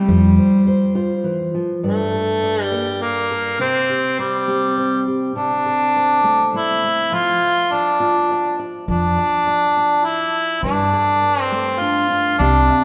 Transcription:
0.00 1.21 G3 medium
0.08 0.36 F2 medium
0.08 1.53 F3 medium
0.08 0.37 C5 medium
0.39 0.66 C5 soft
0.67 0.94 C5 medium
0.95 1.80 F4 medium
0.95 1.80 C5 medium
1.24 1.54 E3 soft
1.54 1.84 F3 medium
1.83 3.60 G2 soft
1.83 2.63 A3 medium
1.83 2.42 D5 soft
2.14 2.71 A4 soft
2.43 3.01 D5 soft
2.63 3.03 G3 medium
2.72 3.56 A#3 soft
2.72 3.30 A4 soft
3.02 3.60 A#3 medium
3.02 3.57 D5 soft
3.31 3.57 A4 soft
3.59 5.34 C3 soft
3.59 4.15 C4 medium
3.59 4.19 C5 soft
3.89 4.47 G4 soft
4.19 5.03 G3 medium
4.19 4.77 C5 soft
4.48 6.24 C4 soft
4.48 5.07 G4 soft
4.78 5.36 C5 soft
5.08 5.33 G4 soft
5.36 7.12 C3 medium
5.36 6.50 D4 medium
5.36 5.96 C5 soft
5.66 6.24 A4 soft
5.96 7.72 C5 soft
6.24 6.54 A3 soft
6.24 9.75 A4 soft
6.54 6.84 A3 soft
6.54 7.15 E4 medium
6.84 7.12 A3 soft
7.12 8.87 F3 medium
7.12 7.73 F4 medium
7.72 8.59 D4 medium
7.72 8.00 D5 soft
8.00 8.85 F4 soft
8.00 8.31 D5 medium
8.31 8.59 D5 soft
8.59 8.89 D5 soft
8.88 9.16 F2 medium
8.88 10.64 F3 medium
8.88 10.06 D4 medium
8.88 9.18 D5 soft
9.18 9.47 D5 soft
9.47 9.76 D5 soft
9.77 10.64 D5 soft
10.05 10.62 E4 medium
10.63 10.91 G2 medium
10.63 12.39 G2 soft
10.63 11.41 D4 medium
10.63 11.21 D5 soft
10.93 11.51 A4 soft
11.22 12.36 D5 soft
11.41 11.80 C4 medium
11.52 12.36 A3 soft
11.52 12.37 A4 soft
11.79 12.09 D4 soft
11.79 12.38 F4 medium
12.10 12.36 D4 soft
12.39 12.68 C2 medium
12.39 12.84 C3 medium
12.39 12.84 C4 soft
12.39 12.84 D4 medium
12.39 12.84 G4 soft
12.39 12.68 E5 soft
12.69 12.84 E5 soft

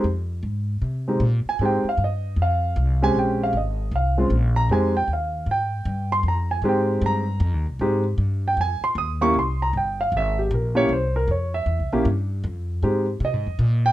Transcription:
0.04 0.42 F2 medium
0.43 0.81 G#2 medium
0.82 1.19 C3 medium
1.08 1.20 G#3 medium
1.08 1.20 C4 medium
1.08 1.21 D#4 medium
1.08 1.20 G4 medium
1.20 1.44 A#2 loud
1.45 1.61 G#5 loud
1.45 muted upright bass stroke soft
1.59 1.83 G#2 medium
1.59 1.83 G#3 medium
1.59 1.83 C4 medium
1.59 1.83 D#4 medium
1.59 1.83 G4 medium
1.65 1.87 G5 medium
1.84 muted upright bass stroke soft
1.89 2.01 F5 medium
1.97 2.36 G2 medium
2.04 2.38 D#5 medium
2.36 2.75 F2 medium
2.42 2.99 F5 medium
2.76 3.14 C2 loud
3.02 3.52 G#3 medium
3.02 3.52 C4 medium
3.02 3.52 C#4 medium
3.02 3.52 G4 medium
3.02 3.16 G#5 loud
3.14 3.52 A#1 medium
3.19 3.41 G5 medium
3.43 3.55 F5 medium
3.53 3.91 G#1 medium
3.57 3.92 D#5 medium
3.91 4.29 C2 medium
3.96 4.54 F5 medium
4.17 4.30 G#3 medium
4.17 4.30 C4 medium
4.17 4.30 C#4 medium
4.17 4.31 F4 medium
4.30 4.68 A#1 loud
4.56 4.70 A#5 loud
4.69 5.07 F2 medium
4.69 4.93 G#3 medium
4.69 4.93 C4 medium
4.69 4.93 D#4 medium
4.69 4.93 G4 medium
4.69 4.95 G#5 loud
4.97 5.09 G5 medium
5.08 5.46 D#2 medium
5.13 5.47 F5 medium
5.46 5.85 G#2 medium
5.51 6.09 G5 medium
5.85 6.22 G2 loud
6.12 6.25 C6 loud
6.23 6.61 F2 medium
6.28 6.51 A#5 medium
6.51 6.64 G#5 medium
6.62 7.00 G#2 medium
6.62 7.22 G#3 medium
6.62 7.23 C4 medium
6.62 7.23 D#4 medium
6.62 7.23 G4 medium
6.69 7.02 G5 medium
7.02 7.39 G2 loud
7.06 7.64 A#5 loud
7.40 7.54 F2 loud
7.54 7.65 D#2 medium
7.66 7.79 C2 medium
7.79 8.17 G#2 medium
7.79 8.03 G#3 medium
7.79 8.03 C4 medium
7.79 8.03 D#4 medium
7.79 8.03 G4 medium
8.18 8.56 G2 loud
8.48 8.59 G5 medium
8.57 8.80 F2 loud
8.57 8.83 G#5 loud
8.81 8.97 C6 loud
8.81 muted upright bass stroke soft
8.95 9.33 D#2 loud
8.95 9.21 D#6 medium
9.21 9.34 A#3 medium
9.21 9.34 C#4 medium
9.21 9.34 E4 medium
9.21 9.34 G4 medium
9.21 9.35 C#6 loud
9.34 9.72 C2 medium
9.39 9.61 C6 medium
9.62 9.74 A#5 medium
9.73 10.11 G1 medium
9.77 9.99 G5 medium
10.01 10.13 F5 medium
10.12 10.49 G#1 loud
10.17 10.38 E5 medium
10.39 10.51 G4 medium
10.51 10.88 A#1 loud
10.51 10.76 A#4 medium
10.75 10.88 A#3 medium
10.75 10.88 C#4 medium
10.75 10.88 E4 medium
10.75 10.88 G4 medium
10.75 10.90 C#5 loud
10.89 11.27 C2 medium
10.89 11.15 C5 medium
11.16 11.29 A#4 medium
11.28 11.65 F2 medium
11.28 11.53 C#5 medium
11.54 12.02 E5 medium
11.66 11.81 E2 medium
11.79 11.92 C2 medium
11.92 12.04 A#1 medium
11.92 12.04 A#3 medium
11.92 12.05 C#4 medium
11.92 12.05 E4 medium
11.92 12.05 G4 medium
12.05 12.43 G2 loud
12.44 12.81 F2 loud
12.83 13.20 G#2 medium
12.83 13.05 G#3 medium
12.83 13.05 C4 medium
12.83 13.05 D#4 medium
12.83 13.05 G4 medium
13.20 13.33 C3 medium
13.25 13.82 D#5 medium
13.33 13.46 G#2 medium
13.46 13.58 F2 medium
13.59 13.92 A#2 loud
13.86 13.92 G5 loud

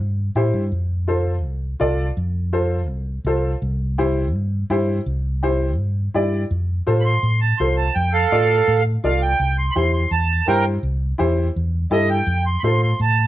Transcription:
0.00 0.29 G2 medium
0.35 0.52 A2 medium
0.35 0.61 E4 medium
0.35 0.61 G4 medium
0.35 0.62 C5 medium
0.54 0.70 G2 medium
0.72 1.44 F2 medium
1.08 1.33 F4 medium
1.08 1.34 A4 medium
1.08 1.34 C5 medium
1.44 1.73 C2 medium
1.80 2.10 C2 medium
1.80 2.06 F4 medium
1.80 2.06 A4 medium
1.80 2.06 D5 medium
2.17 2.88 F2 medium
2.53 2.78 F4 medium
2.53 2.79 A4 medium
2.53 2.79 C5 medium
2.88 3.18 C2 medium
3.25 3.54 C2 medium
3.25 3.51 F4 medium
3.25 3.52 A4 medium
3.25 3.52 C5 medium
3.62 4.34 C2 medium
3.98 4.24 E4 medium
3.98 4.23 G4 medium
3.98 4.24 C5 medium
4.34 4.63 G2 medium
4.70 4.99 G2 medium
4.70 4.96 E4 medium
4.70 4.96 G4 medium
4.70 4.96 C5 medium
5.06 5.78 C2 medium
5.43 5.68 E4 medium
5.43 5.68 G4 medium
5.43 5.68 C5 medium
5.78 6.07 G2 medium
6.14 6.44 G2 medium
6.14 6.40 E4 medium
6.14 6.40 G4 medium
6.14 6.41 D5 medium
6.51 6.80 F2 medium
6.87 7.16 A2 medium
6.87 7.12 F4 medium
6.87 7.12 A4 medium
6.87 7.12 C5 medium
7.00 7.03 B5 medium
7.05 7.40 C6 medium
7.23 7.52 A2 medium
7.41 7.59 A5 medium
7.58 7.89 C2 medium
7.58 7.85 F4 medium
7.58 7.85 A4 medium
7.58 7.85 C5 medium
7.58 7.76 C6 medium
7.77 7.95 A5 medium
7.95 8.25 F2 medium
7.95 8.13 G5 medium
8.13 8.81 A4 medium
8.13 8.84 F5 medium
8.32 8.61 A2 medium
8.32 8.57 F4 medium
8.32 8.57 A4 medium
8.32 8.57 D5 medium
8.68 8.97 A2 medium
9.04 9.33 C2 medium
9.04 9.29 F4 medium
9.04 9.29 A4 medium
9.04 9.29 D5 medium
9.04 9.22 F5 medium
9.22 9.57 G5 medium
9.40 9.69 C2 medium
9.58 9.74 C6 medium
9.71 9.74 B5 medium
9.71 9.92 C6 loud
9.76 10.05 E2 medium
9.76 10.01 E4 medium
9.76 10.01 G4 medium
9.76 10.01 C5 medium
9.93 10.11 C6 medium
10.11 10.40 E2 medium
10.11 10.47 A5 medium
10.47 10.77 G2 medium
10.47 10.73 E4 medium
10.47 10.73 G4 medium
10.47 10.65 A#4 medium
10.47 10.73 C5 medium
10.47 10.66 G5 loud
10.83 11.12 C2 loud
11.18 11.49 E2 medium
11.18 11.44 E4 medium
11.18 11.45 G4 medium
11.18 11.45 C5 medium
11.56 11.85 E2 medium
11.91 12.20 G2 medium
11.91 12.17 E4 medium
11.91 12.17 G4 medium
11.91 12.17 A4 medium
11.91 12.09 D#5 medium
12.10 12.45 G5 medium
12.27 12.56 F2 medium
12.46 12.62 C6 medium
12.60 12.92 A2 medium
12.60 12.62 B5 medium
12.60 12.81 C6 medium
12.64 12.89 F4 medium
12.64 12.89 A4 medium
12.64 12.89 C5 medium
12.83 13.00 C6 medium
13.00 13.27 A2 medium
13.00 13.27 A5 medium

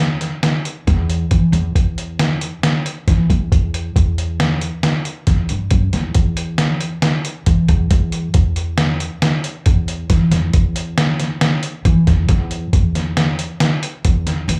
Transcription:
0.00 0.27 E2 medium
0.21 snare soft
0.21 closed hi-hat medium
0.43 snare loud
0.43 closed hi-hat medium
0.65 closed hi-hat medium
0.87 1.23 E2 loud
0.87 kick medium
0.87 snare soft
0.87 closed hi-hat medium
1.10 closed hi-hat medium
1.31 1.50 E3 medium
1.31 kick loud
1.31 closed hi-hat medium
1.52 1.71 E2 medium
1.52 closed hi-hat medium
1.75 2.48 E2 medium
1.75 kick loud
1.75 closed hi-hat medium
1.98 closed hi-hat medium
2.19 snare loud
2.19 closed hi-hat medium
2.41 closed hi-hat medium
2.63 snare loud
2.63 closed hi-hat medium
2.86 closed hi-hat medium
3.08 3.26 E3 loud
3.08 kick loud
3.08 snare soft
3.08 closed hi-hat medium
3.30 3.48 E2 loud
3.30 kick medium
3.30 closed hi-hat medium
3.52 3.88 E2 medium
3.52 kick loud
3.52 closed hi-hat medium
3.74 closed hi-hat medium
3.96 4.68 E2 medium
3.96 kick loud
3.96 closed hi-hat medium
4.18 closed hi-hat medium
4.40 snare loud
4.40 closed hi-hat medium
4.61 closed hi-hat medium
4.83 snare loud
4.83 closed hi-hat medium
5.05 closed hi-hat medium
5.27 5.45 E2 medium
5.27 kick medium
5.27 snare soft
5.27 closed hi-hat medium
5.49 5.70 G2 medium
5.49 closed hi-hat medium
5.71 5.91 F#2 medium
5.71 kick loud
5.71 closed hi-hat medium
5.93 6.13 E2 medium
5.93 snare soft
5.93 closed hi-hat medium
6.14 6.87 E2 medium
6.14 kick loud
6.14 closed hi-hat medium
6.37 closed hi-hat medium
6.58 snare medium
6.58 closed hi-hat medium
6.81 closed hi-hat medium
7.02 snare loud
7.02 closed hi-hat medium
7.25 closed hi-hat medium
7.46 7.65 E3 medium
7.46 kick loud
7.46 closed hi-hat medium
7.68 7.87 E2 medium
7.68 kick medium
7.68 closed hi-hat medium
7.91 8.27 E2 medium
7.91 kick loud
7.91 closed hi-hat medium
8.12 closed hi-hat medium
8.34 9.07 E2 medium
8.34 kick loud
8.34 closed hi-hat medium
8.56 closed hi-hat medium
8.78 snare loud
8.78 closed hi-hat medium
9.00 closed hi-hat medium
9.22 snare loud
9.22 closed hi-hat medium
9.44 closed hi-hat medium
9.66 10.03 E2 loud
9.66 kick loud
9.66 closed hi-hat medium
9.88 closed hi-hat medium
10.10 10.28 E3 medium
10.10 kick loud
10.10 snare soft
10.10 closed hi-hat medium
10.31 10.50 E2 medium
10.31 snare soft
10.31 closed hi-hat medium
10.53 11.26 E2 medium
10.53 kick loud
10.53 closed hi-hat medium
10.76 closed hi-hat medium
10.98 snare loud
10.98 closed hi-hat medium
11.20 snare soft
11.20 closed hi-hat medium
11.41 snare loud
11.41 closed hi-hat medium
11.63 closed hi-hat medium
11.85 12.04 E3 loud
11.85 kick loud
11.85 closed hi-hat medium
12.07 12.26 E2 loud
12.07 kick medium
12.07 snare soft
12.07 closed hi-hat medium
12.29 12.65 E2 loud
12.29 kick loud
12.29 snare soft
12.29 closed hi-hat medium
12.51 closed hi-hat medium
12.73 13.45 E2 medium
12.73 kick loud
12.73 closed hi-hat medium
12.95 snare soft
12.95 closed hi-hat medium
13.17 snare loud
13.17 closed hi-hat medium
13.39 closed hi-hat medium
13.60 snare loud
13.60 closed hi-hat medium
13.83 closed hi-hat medium
14.05 14.41 E2 medium
14.05 kick loud
14.05 closed hi-hat medium
14.27 snare soft
14.27 closed hi-hat medium
14.48 14.60 E3 medium
14.48 closed hi-hat medium

